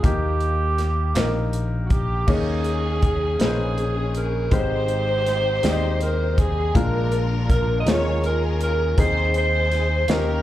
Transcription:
0.03 D#2 D#3 A#3 D#4 G4, kick, closed hi-hat
0.40 closed hi-hat
0.78 snare, closed hi-hat
1.15 A#1 A#3 D#4 A#4, snare, clap, closed hi-hat
1.53 closed hi-hat
1.86 F#4
1.90 G4, kick, closed hi-hat
2.27 D#2 D#3 A#3 C#4 D#4 G#4 C#5, kick, crash
2.64 closed hi-hat
3.02 kick, closed hi-hat
3.39 A#1 A#3 C#4 D#4 G#4 B4, snare, closed hi-hat
3.47 C5
3.78 closed hi-hat
4.15 A#4, closed hi-hat
4.51 G#1 G#2 G#3 C4 D#4 G4 B4 C5, kick, closed hi-hat
4.59 C5
4.88 closed hi-hat
5.26 snare, closed hi-hat
5.63 D#2 G#3 C4 D#4 G4 D5, snare, closed hi-hat
5.71 D#5
6.01 A#4, closed hi-hat
6.38 G#4, kick, closed hi-hat
6.75 A#1 A#2 G#3 A#3 D4 F4 A#4, kick, closed hi-hat
7.12 closed hi-hat
7.50 A#4, kick, closed hi-hat
7.80 D#5
7.86 D#2 D#3 G#3 C#4 D#4 F4 G#4 C#5, snare, closed hi-hat
7.94 A#4
8.24 C#4 F4 A#4, closed hi-hat
8.61 A#4, closed hi-hat
8.97 D#2 D#3 C4 D#4 G#4 C5, kick, closed hi-hat
9.34 D#4 G#4 C5, closed hi-hat
9.72 snare, closed hi-hat
10.08 D#2 D#3 A#3 C#4 D#4 G4 A#4 C#5, snare, closed hi-hat

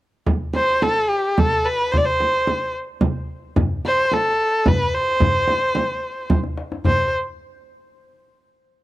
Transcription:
0.26 frame drum
0.54 C5, frame drum
0.82 A4, frame drum
1.10 G4
1.38 A4, frame drum
1.65 B4
1.92 C5, frame drum
1.97 D5
2.05 C5
2.20 frame drum
2.47 frame drum
3.01 frame drum
3.56 frame drum, tombak dum
3.85 C5, tombak tek, frame drum
4.12 A4, tombak tek, frame drum
4.66 B4, frame drum, tombak dum
4.94 C5
5.20 frame drum, tombak dum
5.48 tombak tek, frame drum
5.75 tombak tek, frame drum
6.30 tombak tek, frame drum
6.43 tombak ka
6.58 tombak tek
6.72 tombak ka
6.85 C5, tombak dum, frame drum

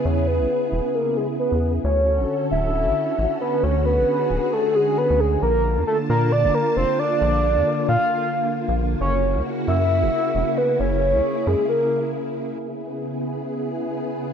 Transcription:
Already playing: C#3 B3 E4 G#4
0.05 E2 C#5
0.28 B4
0.40 B1
0.72 E1
0.95 A#4
1.17 G#4
1.39 B4
1.52 E2
1.84 D2 D3 C#4 F#4 A4 C#5
2.19 A1
2.51 D1 E5
2.86 A1
3.19 A1
3.41 B4
3.63 D2 G#4 C#5
3.86 B4
3.98 A1
4.31 D1
4.53 A4
4.75 G#4
4.98 B4
5.10 D2
5.20 G#4
5.42 A#1 A#3 F4 A#4 A5
5.77 F2
5.87 A4
6.09 A#2 A#4
6.32 D5
6.45 F1
6.54 A#4
6.77 F1 C5
6.99 D5
7.22 A#1
7.57 F2
7.89 A#2 F5
8.68 A#1
9.01 F#1 C#3 E4 F#4 C#5
9.36 C#2
9.68 F#2 E5
10.03 E1
10.35 E1
10.58 B4
10.80 F#1 G#4 C#5
11.15 C#2
11.47 F#2 G#4
11.69 A#4
12.59 C#3 B3 E4 G#4

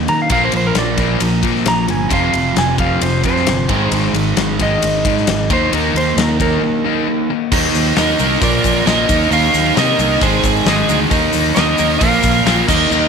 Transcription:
0.08 D#3 A#3 A#5, ride
0.22 F5
0.30 A#1 A#2 F3 A#3 F5, kick, ride
0.45 C5
0.52 A#1 A#2 F3, ride
0.57 C5
0.67 A#4
0.75 A#1 A#2 F3 D5, snare, ride
0.98 A#2 F3 A#3, kick, snare, ride
1.20 A#1 A#2 F3, ride
1.43 A#2 F3 A#3, kick, ride
1.55 snare
1.65 A#1 A#2 F3 A#5, snare, ride
1.87 G1 A#2 F3 G#5, ride
2.09 F1 F2 C3 F3, kick, ride
2.13 F5
2.33 F1 F2 C3, ride
2.56 F1 F2 C3 G#5, snare, ride
2.78 F2 C3 F3 F5, kick, ride
3.01 F1 F2 C3 C5, ride
3.24 F2 C3 F3 C5, kick, ride
3.36 snare
3.47 G1 F2 C3, snare, ride
3.69 G#1 G#2 D#3 G#3, kick, ride
3.91 G#1 G#2 D#3 G#3, ride
4.13 G#1 G#2 D#3, ride
4.37 G#1 G#2 D#3, snare, ride
4.60 G#2 D#3 G#3 D#5, kick, ride
4.82 G#1 G#2 D#3, ride
5.05 G#2 D#3 G#3, kick, ride
5.17 snare
5.27 G#1 G#2 D#3, snare, ride
5.50 D#2 D#3 A#3 D#4 C5, kick, ride
5.72 D#2 D#3 A#3 D#4 A#4, ride
5.94 D#2 D#3 A#3 C5, ride
6.17 D#2 D#3 A#3 A#4, snare, ride
6.40 D#3 A#3 D#4 A#4, kick, ride
6.63 D#3 A#3
6.84 D#3 A#3 D#4
7.08 D#3 A#3
7.30 D#3 A#3
7.52 D#2 D#3 A#3 D#4, kick, crash, shaker
7.75 D#2, snare, open hi-hat, shaker
7.96 D#2 D#3 A#3 D#4 A#4 D#5, snare, open hi-hat, shaker
8.19 C2 D#3 A#3 D#4, open hi-hat, shaker
8.41 A#1 A#2 F3 A#3 A#4 D5, kick, open hi-hat, shaker
8.64 A#1, kick, open hi-hat, shaker
8.77 shaker
8.86 A#1 A#2 F3 A#3 A#4 D#5, snare, open hi-hat, shaker
9.09 D#2 D#3 A#3 D#4, kick, open hi-hat, shaker
9.31 D#2 D#3 A#3 D#4 A#4 F5, open hi-hat, shaker
9.54 D#2, snare, open hi-hat, shaker
9.77 C3 D#3 A#3 D#4 A#4 D#5, snare, open hi-hat, shaker
9.98 C2 D#3 A#3 D#4, open hi-hat, shaker
10.21 G#1 G#2 D#3 G#3 G#4 C5, kick, open hi-hat, shaker
10.43 G#1, kick, open hi-hat, shaker
10.56 shaker
10.66 G#1 G#2 D#3 G#3 G#4 D#5, snare, open hi-hat, shaker
10.88 D2 G#2 D#3 G#3, open hi-hat, shaker
11.11 D#2 D#3 A#3 D#4, kick, open hi-hat, shaker
11.33 D#2, snare, open hi-hat, shaker
11.55 D#2 D#3 A#3 A#4 D#5, snare, open hi-hat, shaker
11.59 D#4
11.78 D#2 D#3 A#3 D#4, open hi-hat, shaker
11.99 A#1 A#4 F5, kick, open hi-hat, shaker
12.03 A#2 F3 A#3
12.23 A#1, kick, open hi-hat, shaker
12.35 shaker
12.45 A#1 A#2 F3 A#3, snare, open hi-hat, shaker
12.68 D#2 D#3 A#3 D#4 A#4 D#5, kick, crash, shaker
12.91 D#2 D#3 A#3 D#4, shaker

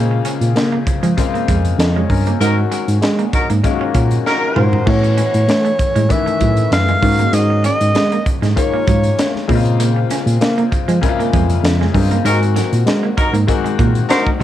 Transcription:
Already playing: A#2 C#3 G#3 A#3 C4 F4
0.11 muted clean electric guitar stroke
0.25 C#4, closed hi-hat
0.41 A#2, closed hi-hat
0.56 A#3, snare, closed hi-hat
0.73 A#3
0.87 muted clean electric guitar stroke, kick, closed hi-hat
1.03 F3 G#3, closed hi-hat
1.17 C#3 G#3 A#3 C4 F4, muted clean electric guitar stroke, kick, closed hi-hat
1.34 A#3, closed hi-hat
1.48 F2 G#3, kick, closed hi-hat
1.65 closed hi-hat
1.79 F2 D#5, snare, closed hi-hat
1.96 G#3 F4 C#5
2.10 G2 C#4 A#4, muted clean electric guitar stroke, kick, open hi-hat
2.27 A#3 C4 G#4, closed hi-hat
2.40 G#2 D#3 F#3 G#3 A#3 C#4 D#4 F#4 A#4, closed hi-hat
2.58 muted clean electric guitar stroke
2.72 G#3, closed hi-hat
2.88 G#2, closed hi-hat
3.02 G#3, snare, closed hi-hat
3.19 A#3, closed hi-hat
3.33 F#3 D#4 A#4, muted clean electric guitar stroke, kick, closed hi-hat
3.49 G#2 A#3, closed hi-hat
3.63 D#3 G#3 A#3 C#4 F4, muted clean electric guitar stroke, kick, closed hi-hat
3.71 F#4
3.81 C#4
3.94 A#2 C#4, kick, closed hi-hat
4.11 closed hi-hat
4.26 F#3 D#4 A#4, snare
4.55 G#2 D#3 G#3 A#3 C#4 F4 F#4 C5, mid tom
4.73 floor tom
4.86 A2 E3 A3 B3 C#4 F#4 C#5, kick, crash
5.04 muted clean electric guitar stroke, closed hi-hat
5.18 C#4, closed hi-hat, muted conga
5.34 A2, closed hi-hat
5.48 A3, snare, closed hi-hat, high conga
5.65 A3, closed hi-hat
5.79 muted clean electric guitar stroke, kick, closed hi-hat
5.96 A2 G#3, closed hi-hat
6.09 D#3 E3 A3 B3 C#4 E5, muted clean electric guitar stroke, kick, closed hi-hat
6.26 A3, closed hi-hat
6.41 A2 F#3, kick, closed hi-hat, muted conga, low conga
6.57 closed hi-hat
6.71 F#2 F5, snare, closed hi-hat, high conga
6.88 G#3, closed hi-hat, high conga
7.01 G#2 D#3 G#3 A#3 C#4 F4, muted clean electric guitar stroke, kick, open hi-hat
7.09 F#4
7.19 A#3, closed hi-hat
7.33 G#2 G#3 D#5, closed hi-hat
7.50 muted clean electric guitar stroke
7.64 C#4 D#5, closed hi-hat, muted conga
7.81 G#2, closed hi-hat
7.95 G#3, snare, closed hi-hat, high conga
8.12 A#3, closed hi-hat
8.26 muted clean electric guitar stroke, kick, closed hi-hat
8.42 G#2 G#3, snare, closed hi-hat
8.55 D#3 G#3 A#3 C#4 F4 C#5, muted clean electric guitar stroke, kick, closed hi-hat
8.73 A#3
8.87 G#2 F#3, kick, closed hi-hat, muted conga, low conga
9.03 closed hi-hat
9.18 snare, closed hi-hat, high conga
9.35 snare, high conga
9.47 A#2 C#3 G#3 A#3 C4 E4, kick, open hi-hat
9.55 F4
9.65 closed hi-hat
9.80 A#3, closed hi-hat, muted conga
9.96 muted clean electric guitar stroke
10.10 C#4, snare, closed hi-hat, muted conga
10.27 A#2, closed hi-hat
10.41 A#3, snare, closed hi-hat, high conga
10.58 A#3, closed hi-hat
10.72 muted clean electric guitar stroke, kick, closed hi-hat
10.88 F3 G#3, closed hi-hat
11.01 C#3 G#3 A#3 C4 E4, muted clean electric guitar stroke, kick, closed hi-hat
11.09 F4
11.19 A#3, closed hi-hat
11.33 F2 G#3, kick, closed hi-hat, muted conga, low conga
11.49 closed hi-hat
11.64 F2, snare, closed hi-hat, high conga
11.81 G#3, snare, high conga
11.93 G2 C#3 G#3 A#3 C4 F4, muted clean electric guitar stroke, kick, open hi-hat
12.11 A#3, closed hi-hat
12.24 G#2 D#3 F#3 G#3 A#3 C4 D#4 F4 A#4, closed hi-hat, muted conga
12.32 F#4
12.42 muted clean electric guitar stroke, closed hi-hat
12.56 F#3, snare, closed hi-hat, muted conga
12.73 A#2, closed hi-hat
12.86 G#3, snare, closed hi-hat, high conga
13.03 A#3
13.17 F#3 D#4 A#4, muted clean electric guitar stroke, kick, closed hi-hat
13.33 G#2 A#3, closed hi-hat
13.47 D#3 G#3 A#3 C4 F#4, muted clean electric guitar stroke, kick, closed hi-hat
13.65 G#3, closed hi-hat
13.79 A#2 A#3, kick, closed hi-hat, muted conga, low conga
13.95 closed hi-hat
14.09 F#3 D#4 A#4 C5, snare, closed hi-hat, high conga
14.27 kick, high conga
14.39 C2 D#3 G#3 A#3 C4

